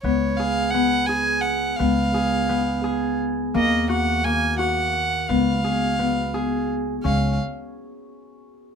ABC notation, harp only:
X:1
M:5/8
L:1/8
Q:1/4=86
K:Dbmix
V:1 name="Harp"
C A C A2 | C A C A2 | B, G B, G2 | C A C A2 |
D z4 |]